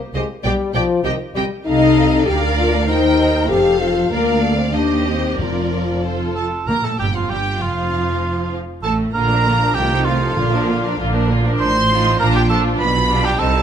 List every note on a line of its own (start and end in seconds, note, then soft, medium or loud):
0.14 0.23 C2 medium
0.14 0.22 C3 soft
0.14 0.28 G#3 medium
0.14 0.23 G4 soft
0.14 0.23 C5 soft
0.14 0.23 D#5 soft
0.44 0.52 B1 medium
0.44 0.52 B2 medium
0.44 0.74 G3 medium
0.44 0.53 G4 medium
0.44 0.52 D5 soft
0.44 0.52 G5 medium
0.74 0.82 B1 medium
0.74 0.82 B2 soft
0.74 1.04 F3 medium
0.74 0.83 G4 soft
0.74 0.82 D5 soft
0.74 0.82 G5 soft
1.04 1.12 C2 medium
1.04 1.12 C3 medium
1.04 1.18 D#3 medium
1.04 1.12 G4 medium
1.04 1.14 D#5 medium
1.04 1.13 G5 soft
1.35 1.44 C2 medium
1.35 1.44 C3 medium
1.35 1.49 G3 medium
1.35 1.43 G4 medium
1.35 1.44 D#5 soft
1.35 1.44 G5 soft
1.66 2.24 C2 medium
1.66 2.24 C3 medium
1.66 2.26 D#4 medium
1.66 2.24 A4 medium
1.66 2.25 D#5 medium
1.66 2.24 F5 medium
2.26 2.87 D2 medium
2.26 2.88 D2 medium
2.26 2.40 G4 medium
2.26 2.87 A#4 medium
2.26 2.89 D5 medium
2.26 2.87 F5 medium
2.58 2.73 F4 medium
2.74 2.80 D4 medium
2.87 3.49 D#2 medium
2.87 3.48 D#4 medium
2.87 3.48 A#4 medium
2.87 3.48 C5 medium
2.87 3.50 G5 medium
3.48 4.11 F1 medium
3.48 4.11 F2 medium
3.48 3.80 G4 medium
3.48 4.11 A4 medium
3.48 4.11 C5 medium
3.48 4.10 F5 medium
3.79 4.11 F4 medium
4.10 4.71 D2 medium
4.10 4.72 D2 medium
4.10 4.57 A#3 medium
4.10 4.42 A#4 soft
4.10 4.74 D5 soft
4.10 4.72 F5 medium
4.42 4.50 A4 soft
4.57 4.73 C4 medium
4.72 5.37 D#2 soft
4.72 5.38 D#2 medium
4.72 5.05 D4 medium
4.72 5.37 G4 soft
4.72 5.38 C5 soft
4.72 5.39 D#5 soft
5.07 5.39 C4 medium
5.37 6.48 F1 soft
5.37 5.99 F2 medium
5.37 6.48 F2 soft
5.37 6.34 F3 medium
5.37 6.02 F4 soft
5.37 6.01 A#4 soft
5.37 6.02 D5 soft
6.03 6.47 F4 soft
6.03 6.47 A4 soft
6.03 6.37 C5 soft
6.35 6.69 A4 medium
6.35 6.44 A5 soft
6.67 6.74 A#1 soft
6.67 7.26 A#2 soft
6.67 6.75 A#2 medium
6.67 6.75 A#3 soft
6.67 6.86 A#4 medium
6.67 6.83 A#4 medium
6.67 6.84 A#5 medium
6.83 6.99 A2 soft
6.83 6.90 A3 soft
6.83 6.90 A4 soft
6.83 6.99 A4 soft
6.83 6.99 A5 soft
6.99 7.14 G1 soft
6.99 7.15 G2 soft
6.99 7.05 G3 soft
6.99 7.06 G4 medium
6.99 7.15 G4 soft
6.99 7.15 G5 soft
7.14 7.30 F2 soft
7.14 7.30 F3 soft
7.14 7.31 F4 soft
7.14 7.30 F4 soft
7.14 7.30 F5 soft
7.30 7.61 G1 soft
7.30 7.61 G2 soft
7.30 7.38 G3 soft
7.30 7.63 G4 medium
7.30 7.62 G4 soft
7.30 7.61 G5 soft
7.61 8.54 F1 soft
7.61 8.54 F2 soft
7.61 8.52 F3 soft
7.61 8.52 F4 soft
7.61 8.54 F4 soft
7.61 8.54 F5 soft
8.82 9.13 A1 medium
8.82 9.14 A2 medium
8.82 9.13 A3 medium
8.82 8.97 A4 medium
8.82 8.92 A4 medium
8.82 8.92 A5 soft
9.14 9.69 A#1 soft
9.14 9.70 A#2 medium
9.14 9.29 D3 soft
9.14 9.29 A#3 soft
9.14 9.31 F4 soft
9.14 9.76 A#4 medium
9.14 9.75 A#5 medium
9.29 9.46 F3 soft
9.29 9.45 D4 soft
9.29 9.46 D4 soft
9.29 9.46 A#4 soft
9.44 9.60 D3 soft
9.44 9.60 A#3 soft
9.44 9.62 F4 soft
9.60 9.76 F3 soft
9.60 9.76 D4 soft
9.60 9.77 D4 soft
9.60 9.77 A#4 soft
9.75 10.30 C2 medium
9.75 10.31 C3 medium
9.75 9.90 D#3 soft
9.75 9.90 A3 soft
9.75 9.91 C4 soft
9.75 9.91 F4 soft
9.75 10.07 G4 medium
9.75 10.07 G5 medium
9.91 10.07 F3 soft
9.91 10.07 C4 soft
9.91 10.07 D#4 soft
9.91 10.08 A4 soft
10.05 10.22 D#3 soft
10.05 10.22 A3 soft
10.05 10.23 C4 soft
10.05 10.99 F4 medium
10.05 10.23 F4 soft
10.05 10.98 F5 soft
10.21 10.38 F3 soft
10.21 10.38 C4 soft
10.21 10.39 D#4 soft
10.21 10.39 A4 soft
10.36 10.92 A#1 medium
10.36 11.26 A#2 medium
10.36 10.92 A#2 medium
10.36 10.52 D3 soft
10.36 10.52 A#3 soft
10.36 10.53 F4 medium
10.52 10.69 F3 soft
10.52 10.69 D4 soft
10.52 10.70 A#4 soft
10.67 10.84 D3 soft
10.67 10.84 A#3 soft
10.67 10.84 F4 soft
10.82 10.99 F3 soft
10.82 10.99 D4 soft
10.82 10.99 A#4 soft
10.98 11.53 A#1 medium
10.98 11.54 A#2 medium
10.98 11.13 D3 soft
10.98 11.13 A#3 soft
10.98 11.14 F4 medium
11.13 11.29 F3 soft
11.13 11.29 D4 soft
11.13 11.31 D4 soft
11.13 11.31 A#4 soft
11.28 11.44 D3 soft
11.28 11.45 A#3 soft
11.28 11.46 F4 soft
11.42 11.59 F3 soft
11.42 11.59 D4 soft
11.47 11.62 D4 soft
11.47 11.62 A#4 soft
11.59 12.12 A1 medium
11.59 12.13 A2 medium
11.59 12.16 C5 medium
11.59 12.16 C6 medium
11.89 12.16 F3 soft
11.89 12.19 C4 soft
11.89 12.20 D#4 medium
11.89 12.18 F4 soft
12.17 12.72 A#1 medium
12.17 12.73 A#2 medium
12.17 12.45 F3 soft
12.17 12.45 D4 soft
12.17 12.48 D4 medium
12.17 12.47 F4 medium
12.17 12.27 A#4 medium
12.17 12.34 A#5 medium
12.35 12.42 G4 medium
12.35 12.50 G5 medium
12.46 12.77 F3 soft
12.46 12.78 D4 soft
12.46 12.79 D4 soft
12.46 12.78 F4 soft
12.46 12.63 A4 medium
12.46 12.57 A5 medium
12.79 13.33 B1 medium
12.79 13.33 B2 medium
12.79 13.26 B4 medium
12.79 13.24 B5 medium
13.07 13.38 G3 soft
13.07 13.38 D4 soft
13.07 13.39 D4 soft
13.07 13.39 F4 soft
13.25 13.41 G4 medium
13.25 13.41 G5 medium
13.38 13.62 C2 medium
13.38 13.62 C3 medium
13.38 13.62 G3 soft
13.38 13.62 C4 soft
13.38 13.62 D#4 soft
13.38 13.62 A4 medium
13.38 13.62 A5 medium